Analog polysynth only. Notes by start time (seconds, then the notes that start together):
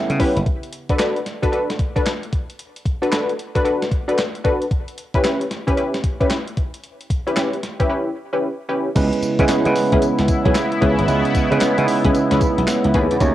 0.19 C#4 E4 G4 B4
0.90 D4 F#4 A4 B4
0.99 D4 F#4 A4 B4
1.42 D4 F#4 A4 B4
1.52 D4 F#4 A4 B4
1.96 D4 F#4 A4 B4
3.02 D4 F#4 A4 B4
3.11 D4 F#4 A4 B4
3.55 D4 F#4 A4 B4
3.64 D4 F#4 A4 B4
4.08 D4 F#4 A4 B4
4.44 D4 F#4 A4 B4
5.14 C#4 E4 G4 B4
5.24 C#4 E4 G4 B4
5.67 C#4 E4 G4 B4
5.77 C#4 E4 G4 B4
6.20 C#4 E4 G4 B4
7.27 C#4 E4 G4 B4
7.36 C#4 E4 G4 B4
7.80 C#4 E4 G4 B4
7.90 C#4 E4 G4 B4
8.33 C#4 E4 G4 B4
8.69 C#4 E4 G4 B4
9.39 C#4 E4 G#4 B4
9.49 C#4 E4 G#4 B4
9.92 C#4 E4 G#4 B4
10.45 C#4 E4 G#4 B4
10.81 C#4 E4 G#4 B4
11.51 C#4 E4 G#4 B4
11.61 C#4 E4 G#4 B4
12.04 C#4 E4 G#4 B4
12.31 C#4 E4 G#4 B4
12.94 C#4 E4 G#4 B4